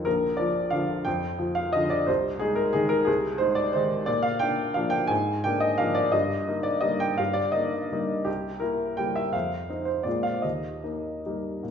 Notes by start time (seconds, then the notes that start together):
0.05 A#1 A#4
0.37 F3 F4 D5
0.70 D3 F3 F4 F5
1.05 F2 G5
1.38 F3 F4
1.55 F5
1.73 D3 F3 F4 D#5
1.90 D5
2.07 C2 C5
2.39 G#3 D#4 G#4
2.55 A#4
2.73 D#3 G#3 D#4 G#4
2.89 A#4
3.05 C2 G#4
3.38 G#3 D#4 C5
3.55 D5
3.73 D#3 G#3 D#4 C5
4.06 A#2 D5
4.23 F5
4.39 A#3 D4 G5
4.74 F3 A#3 D4 F5
4.90 G5
5.07 G#2 G#5
5.44 A#3 D4 G5
5.60 D#5
5.78 F3 A#3 D4 F5
5.95 D5
6.12 G2 D#5
6.48 A#3 D#4
6.63 D5
6.81 G3 A#3 D#4 D#5
7.00 G5
7.18 G2 F5
7.33 D5
7.52 A#3 D#4 D#5
7.92 G3 A#3 D#4
8.25 C2 G4
8.60 A#3 E4 A#4
8.97 G3 A#3 E4 G5
9.16 E5
9.33 F2 F5
9.70 C4 D#4
9.85 C5
10.03 A#2 G#3 C4 F4 D5
10.23 F5
10.42 D#2 D#5
10.83 A#3 D#4
11.26 G3 A#3 D#4
11.63 A#2